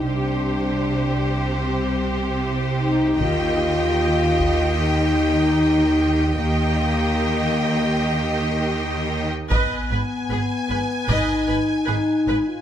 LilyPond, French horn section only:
\new Staff \with { instrumentName = "French horn section" } { \time 4/4 \key ees \major \tempo 4 = 76 d'2 c'4 r8 ees'8 | f'2 ees'2 | bes2.~ bes8 r8 | ces'2 ees'4 ees'8. f'16 | }